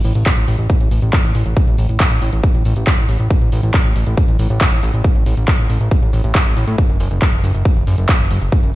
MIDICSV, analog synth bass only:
0, 0, Header, 1, 2, 480
1, 0, Start_track
1, 0, Tempo, 434783
1, 1729, Time_signature, 4, 2, 24, 8
1, 9660, End_track
2, 0, Start_track
2, 0, Title_t, "Analog synth bass"
2, 0, Program_c, 0, 38
2, 50, Note_on_c, 0, 33, 100
2, 146, Note_off_c, 0, 33, 0
2, 170, Note_on_c, 0, 33, 90
2, 266, Note_off_c, 0, 33, 0
2, 410, Note_on_c, 0, 33, 92
2, 506, Note_off_c, 0, 33, 0
2, 530, Note_on_c, 0, 33, 97
2, 626, Note_off_c, 0, 33, 0
2, 649, Note_on_c, 0, 33, 93
2, 746, Note_off_c, 0, 33, 0
2, 888, Note_on_c, 0, 33, 88
2, 986, Note_off_c, 0, 33, 0
2, 1009, Note_on_c, 0, 33, 100
2, 1106, Note_off_c, 0, 33, 0
2, 1129, Note_on_c, 0, 33, 98
2, 1226, Note_off_c, 0, 33, 0
2, 1370, Note_on_c, 0, 33, 87
2, 1466, Note_off_c, 0, 33, 0
2, 1489, Note_on_c, 0, 33, 99
2, 1586, Note_off_c, 0, 33, 0
2, 1609, Note_on_c, 0, 33, 95
2, 1706, Note_off_c, 0, 33, 0
2, 1849, Note_on_c, 0, 33, 89
2, 1946, Note_off_c, 0, 33, 0
2, 1969, Note_on_c, 0, 33, 99
2, 2066, Note_off_c, 0, 33, 0
2, 2089, Note_on_c, 0, 33, 91
2, 2186, Note_off_c, 0, 33, 0
2, 2329, Note_on_c, 0, 33, 93
2, 2426, Note_off_c, 0, 33, 0
2, 2449, Note_on_c, 0, 33, 102
2, 2546, Note_off_c, 0, 33, 0
2, 2570, Note_on_c, 0, 33, 91
2, 2666, Note_off_c, 0, 33, 0
2, 2810, Note_on_c, 0, 33, 86
2, 2906, Note_off_c, 0, 33, 0
2, 2929, Note_on_c, 0, 33, 107
2, 3026, Note_off_c, 0, 33, 0
2, 3049, Note_on_c, 0, 33, 98
2, 3146, Note_off_c, 0, 33, 0
2, 3289, Note_on_c, 0, 33, 88
2, 3386, Note_off_c, 0, 33, 0
2, 3408, Note_on_c, 0, 33, 99
2, 3506, Note_off_c, 0, 33, 0
2, 3529, Note_on_c, 0, 33, 93
2, 3626, Note_off_c, 0, 33, 0
2, 3770, Note_on_c, 0, 33, 87
2, 3866, Note_off_c, 0, 33, 0
2, 3889, Note_on_c, 0, 33, 102
2, 3986, Note_off_c, 0, 33, 0
2, 4009, Note_on_c, 0, 33, 90
2, 4106, Note_off_c, 0, 33, 0
2, 4249, Note_on_c, 0, 33, 91
2, 4346, Note_off_c, 0, 33, 0
2, 4370, Note_on_c, 0, 33, 100
2, 4466, Note_off_c, 0, 33, 0
2, 4490, Note_on_c, 0, 33, 94
2, 4586, Note_off_c, 0, 33, 0
2, 4730, Note_on_c, 0, 33, 85
2, 4827, Note_off_c, 0, 33, 0
2, 4850, Note_on_c, 0, 33, 103
2, 4946, Note_off_c, 0, 33, 0
2, 4970, Note_on_c, 0, 33, 95
2, 5066, Note_off_c, 0, 33, 0
2, 5210, Note_on_c, 0, 33, 84
2, 5306, Note_off_c, 0, 33, 0
2, 5330, Note_on_c, 0, 33, 100
2, 5426, Note_off_c, 0, 33, 0
2, 5450, Note_on_c, 0, 33, 97
2, 5546, Note_off_c, 0, 33, 0
2, 5690, Note_on_c, 0, 33, 86
2, 5786, Note_off_c, 0, 33, 0
2, 5810, Note_on_c, 0, 33, 98
2, 5907, Note_off_c, 0, 33, 0
2, 5930, Note_on_c, 0, 33, 92
2, 6026, Note_off_c, 0, 33, 0
2, 6170, Note_on_c, 0, 33, 89
2, 6266, Note_off_c, 0, 33, 0
2, 6289, Note_on_c, 0, 33, 99
2, 6386, Note_off_c, 0, 33, 0
2, 6409, Note_on_c, 0, 33, 94
2, 6506, Note_off_c, 0, 33, 0
2, 6649, Note_on_c, 0, 33, 83
2, 6746, Note_off_c, 0, 33, 0
2, 6769, Note_on_c, 0, 33, 105
2, 6866, Note_off_c, 0, 33, 0
2, 6890, Note_on_c, 0, 33, 97
2, 6986, Note_off_c, 0, 33, 0
2, 7129, Note_on_c, 0, 33, 87
2, 7226, Note_off_c, 0, 33, 0
2, 7249, Note_on_c, 0, 33, 98
2, 7346, Note_off_c, 0, 33, 0
2, 7369, Note_on_c, 0, 45, 94
2, 7466, Note_off_c, 0, 45, 0
2, 7609, Note_on_c, 0, 30, 88
2, 7706, Note_off_c, 0, 30, 0
2, 7729, Note_on_c, 0, 30, 101
2, 7826, Note_off_c, 0, 30, 0
2, 7849, Note_on_c, 0, 30, 91
2, 7946, Note_off_c, 0, 30, 0
2, 8089, Note_on_c, 0, 30, 90
2, 8186, Note_off_c, 0, 30, 0
2, 8210, Note_on_c, 0, 30, 101
2, 8306, Note_off_c, 0, 30, 0
2, 8330, Note_on_c, 0, 30, 91
2, 8426, Note_off_c, 0, 30, 0
2, 8570, Note_on_c, 0, 30, 84
2, 8667, Note_off_c, 0, 30, 0
2, 8690, Note_on_c, 0, 30, 100
2, 8787, Note_off_c, 0, 30, 0
2, 8810, Note_on_c, 0, 30, 96
2, 8907, Note_off_c, 0, 30, 0
2, 9050, Note_on_c, 0, 30, 88
2, 9147, Note_off_c, 0, 30, 0
2, 9170, Note_on_c, 0, 30, 96
2, 9267, Note_off_c, 0, 30, 0
2, 9291, Note_on_c, 0, 30, 94
2, 9387, Note_off_c, 0, 30, 0
2, 9530, Note_on_c, 0, 30, 90
2, 9627, Note_off_c, 0, 30, 0
2, 9660, End_track
0, 0, End_of_file